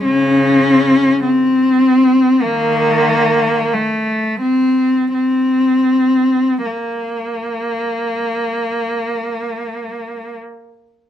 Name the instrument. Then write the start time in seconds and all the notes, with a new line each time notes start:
cello
0.04 C#3 C#4
1.25 C4
2.42 D#3 A#3
3.73 A3
4.41 C4
5.14 C4
6.66 A#3